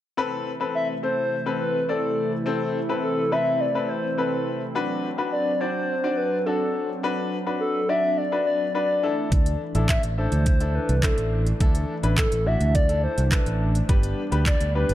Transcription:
0.17 C3 E3 A3 C4 E4 A4 B4
0.60 C4 A4 B4
0.75 E5
1.03 C4 A4 C5
1.46 C4 A4 B4
1.60 B4
1.89 C4 A4 D5
2.46 C4 A4 C5
2.89 C4 A4 B4
3.03 A4
3.32 C4 A4 B4 E5
3.60 D5
3.75 C4 A4 B4
3.89 C5
4.17 C4 A4 B4
4.75 F#3 D4 F#4 B4
5.18 D4 F#4 B4
5.32 D5
5.60 D4 F#4 C5 D5
6.04 D4 F#4 D5
6.17 B4
6.46 D4 F#4 A4
7.03 D4 F#4 B4
7.46 D4 F#4 B4
7.60 A4
7.89 D4 F#4 D5 E5
8.18 D5
8.32 D4 F#4 B4
8.46 D5
8.74 D4 F#4 B4 D5
9.03 E3 A3 D4 E4 A4
9.32 D2, kick, closed hi-hat
9.46 closed hi-hat
9.75 A1 D4 E4 A4, closed hi-hat
9.89 E5, kick, clap, closed hi-hat
10.03 A1, closed hi-hat
10.18 D4 E4 A4 C5
10.32 D2, closed hi-hat
10.46 kick, closed hi-hat
10.60 D4 E4 A4, closed hi-hat
10.75 B4
10.89 C2, closed hi-hat
11.03 D4 E4 A4 C5, kick, clap, closed hi-hat
11.18 A1, closed hi-hat
11.47 closed hi-hat
11.60 D2 D4 E4 A4, kick, closed hi-hat
11.75 closed hi-hat
12.03 A1 D4 E4 B4, closed hi-hat
12.18 A4, kick, clap, closed hi-hat
12.32 A1, closed hi-hat
12.46 D4 E4 F#4 E5
12.61 D2, closed hi-hat
12.75 D5, kick, closed hi-hat
12.89 D4 E4 A4, closed hi-hat
13.04 C5
13.18 C2, closed hi-hat
13.31 D4 E4 A4 B4, kick, clap, closed hi-hat
13.46 A1, closed hi-hat
13.75 closed hi-hat
13.89 G1 G3 B3 D4 G4 B4, kick, closed hi-hat
14.03 closed hi-hat
14.31 D2 D4 G4 B4, closed hi-hat
14.46 D5, kick, clap, closed hi-hat
14.61 D2, closed hi-hat
14.75 D4 G4 B4
14.89 G1, closed hi-hat

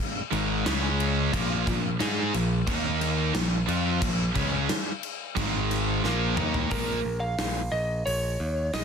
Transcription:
0.32 G#1 G#2 D#3 G#3, crash
0.66 C#2 C#3 G#3 C#4, snare, crash
1.00 crash
1.33 A#1 A#2 F3 A#3, kick, crash
1.67 A#1 A#2 F3, kick, crash
1.99 G#2 G#3 D#4 G#4, snare, crash
2.34 A#1 A#2 F3, crash
2.66 D#2 D#3 A#3 D#4, kick, crash
3.01 snare, crash
3.34 A#1 A#2 F3, snare, crash
3.68 F2 F3 C4 F4, crash
4.02 A#1 A#2 F3, kick, crash
4.35 C#2 C#3 G#3 C#4, kick, crash
4.69 snare, crash
5.03 crash
5.37 G#1 G#2 D#3 G#3, kick, crash
5.71 snare, crash
6.04 A#1 A#2 F3 A#3, snare
6.37 D#2 D#3 A#3 D#4, mid tom
6.54 floor tom
6.71 A#1 A#2 F3 A#3 A#4, kick, open hi-hat
7.05 A#1
7.20 F5
7.39 A#1, snare, open hi-hat
7.72 A#1 D#5
8.06 A#1 C#5, open hi-hat
8.40 D#2
8.74 A#1 D#5, snare, open hi-hat

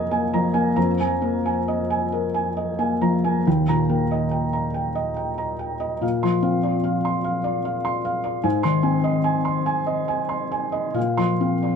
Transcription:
Already playing: F2 F3 A#3 A#4 D#5 G#5 A#5
0.11 A#3 G#5
0.33 F3 A#5
0.54 A#3 G#5
0.76 F2 A#5
1.00 F3 G#5
1.22 A#3 A#4
1.46 G#5
1.68 D#5
1.90 G#5
2.12 A#4
2.34 G#5
2.57 D#5
2.79 A#3 G#5
3.01 F3 A#5
3.24 A#3 G#5
3.47 D#2 G5
3.68 A#2 A#5
3.89 A#3 G5
4.11 D#5
4.31 G5
4.53 A#5
4.74 G5
4.95 D#5
5.16 G5
5.38 A#5
5.59 G5
5.80 D#5
6.01 A#2 F5
6.23 F3 C6
6.42 C4 F5
6.63 D5
6.84 F5
7.05 C6
7.24 F5
7.44 D5
7.65 F5
7.85 C6
8.05 F5
8.24 D5
8.44 G#2 G#5
8.63 D#3 C6
8.83 C4 G#5
9.04 D#5
9.24 G#5
9.45 C6
9.66 G#5
9.87 D#5
10.08 G#5
10.29 C6
10.52 G#5
10.72 D#5
10.94 A#2 F5
11.17 F3 C6
11.40 C4 F5
11.63 D5

